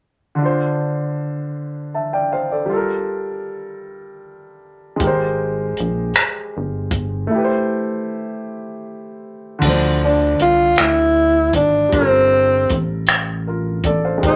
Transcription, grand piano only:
0.35 2.64 D3 medium
0.35 2.65 D4 medium
0.42 2.67 F4 soft
0.42 1.93 C5 medium
1.94 2.12 E5 soft
1.94 2.12 A5 soft
2.13 2.31 D5 soft
2.13 2.31 G5 medium
2.32 2.50 C5 soft
2.32 2.50 F5 medium
2.51 2.71 A4 soft
2.51 2.87 D5 soft
2.66 4.94 G3 medium
2.66 4.96 F4 medium
2.73 4.98 A4 medium
2.73 5.00 A#4 medium
4.96 7.25 G#3 medium
4.96 7.27 G4 medium
5.04 7.29 A#4 medium
5.04 7.30 C5 medium
7.27 9.56 A3 medium
7.27 9.58 E4 medium
7.35 9.60 G4 medium
7.35 7.41 B4 medium
7.44 9.64 C5 medium
9.59 11.87 D3 medium
9.59 11.89 D4 medium
9.66 11.90 F3 medium
9.66 11.92 C5 medium
11.89 14.17 G3 medium
11.89 13.43 F4 medium
11.96 13.45 A4 soft
11.96 13.46 A#4 medium
13.47 13.84 F4 soft
13.47 13.83 A#4 soft
13.86 14.04 A4 medium
13.86 14.04 D5 medium
14.05 14.27 C5 soft
14.05 14.36 F5 medium
14.18 14.36 G#3 medium
14.18 14.36 G4 medium
14.25 14.36 A#4 medium
14.25 14.36 C5 medium

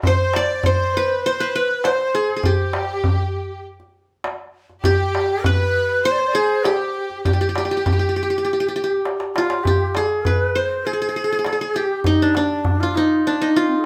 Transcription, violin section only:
0.05 0.32 C5 medium
0.36 0.65 D5 medium
0.64 0.94 C5 medium
0.95 1.24 B4 medium
1.24 1.52 C5 medium
1.55 1.84 B4 medium
1.84 2.14 C5 medium
2.14 2.35 G#4 medium
2.36 2.44 G#4 soft
2.45 3.64 G4 medium
4.83 5.40 G4 medium
5.44 6.04 B4 medium
6.04 6.32 C5 medium
6.34 6.64 G#4 medium
6.64 7.23 G4 medium
7.24 9.01 G4 medium

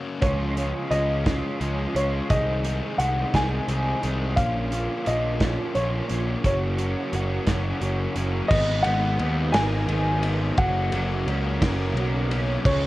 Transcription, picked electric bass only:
0.22 0.72 C#2 medium
0.91 1.41 C#2 medium
1.61 1.85 C#2 medium
1.95 2.20 C#2 medium
2.30 2.80 C2 medium
2.98 3.23 C2 medium
3.34 3.59 C2 medium
3.68 3.93 C2 medium
4.04 4.37 C2 medium
4.37 4.87 A#1 medium
5.07 5.57 A#1 medium
5.75 6.00 A#1 medium
6.10 6.35 A#1 medium
6.44 6.94 F#1 medium
7.13 7.38 F#1 medium
7.47 7.72 F#1 medium
7.81 8.07 F#1 medium
8.16 8.41 F#1 medium
8.51 8.82 G#1 medium
8.85 9.17 G#1 medium
9.19 9.51 D#2 medium
9.54 9.85 G#1 medium
9.88 10.50 G#1 medium
10.58 10.89 F#1 medium
10.92 11.23 F#1 medium
11.26 11.58 C#2 medium
11.61 11.92 F#1 medium
11.94 12.57 B1 loud
12.65 12.87 C#2 loud

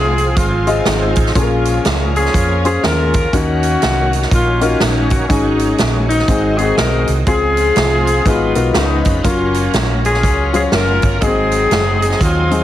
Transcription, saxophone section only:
0.00 0.33 C4 medium
0.00 0.33 F4 medium
0.00 0.37 G#4 loud
0.37 1.31 G#3 medium
0.37 1.31 C4 medium
0.37 0.67 F4 medium
0.68 0.85 F4 medium
0.87 1.16 D#4 medium
1.17 1.35 D#4 medium
1.36 2.30 G#3 medium
1.36 2.15 C#4 medium
1.36 1.85 F4 medium
2.16 2.83 C#4 medium
2.16 2.83 F4 medium
2.16 2.62 G#4 loud
2.66 2.83 G#4 medium
2.84 3.29 C#4 medium
2.84 3.30 F4 medium
2.84 3.33 A#4 loud
3.34 4.28 A#3 medium
3.34 4.28 C#4 medium
3.34 4.28 F#4 loud
4.33 5.27 A#3 medium
4.33 5.27 C#4 medium
4.33 4.62 F4 medium
4.63 4.80 F4 medium
4.81 5.11 D#4 medium
5.11 5.29 F#4 medium
5.29 6.08 F#3 medium
5.29 5.79 D#4 medium
6.09 7.04 F#3 medium
6.09 7.04 C4 medium
6.09 6.55 D#4 medium
6.58 6.77 G#4 medium
6.78 7.14 D#4 medium
6.78 7.14 F#4 medium
6.78 7.15 A#4 medium
7.28 8.22 C4 medium
7.28 8.23 F4 medium
7.28 8.26 G#4 loud
8.27 8.72 B3 medium
8.27 8.56 F4 medium
8.57 8.74 F4 medium
8.75 9.21 G#3 medium
8.75 9.21 B3 medium
8.75 9.04 D#4 medium
9.06 9.23 D#4 medium
9.26 10.20 A#3 medium
9.26 10.04 C#4 medium
9.26 9.75 F4 medium
10.06 10.73 C#4 medium
10.06 10.72 F4 medium
10.06 10.51 G#4 medium
10.56 10.64 G#4 medium
10.74 11.20 C#4 medium
10.74 11.19 F4 medium
10.74 11.20 A#4 medium
11.22 12.17 C4 medium
11.22 12.17 D#4 medium
11.22 12.22 G#4 loud
12.21 12.64 C4 medium
12.21 12.64 F4 medium

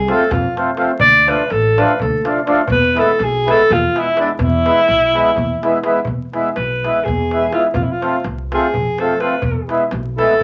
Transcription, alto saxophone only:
0.00 0.13 G#4 medium
0.12 0.33 A4 medium
0.32 0.57 F4 medium
1.01 1.30 D5 loud
1.28 1.53 B4 loud
1.51 1.81 A4 medium
1.79 2.00 B4 medium
2.01 2.24 A4 medium
2.72 3.01 B4 loud
2.99 3.25 A4 loud
3.23 3.52 G#4 loud
3.51 3.74 A4 loud
3.73 4.01 F4 loud
3.99 4.19 E4 loud
4.21 4.29 D4 medium
4.43 5.84 E4 loud
6.56 7.06 B4 medium
7.04 7.52 G#4 medium
7.53 7.63 F4 medium
7.74 7.84 F4 medium
7.83 7.93 E4 medium
7.91 8.25 F4 medium
8.54 9.01 G#4 medium
9.00 9.20 A4 medium
9.20 9.66 B4 medium
10.18 10.43 A4 loud

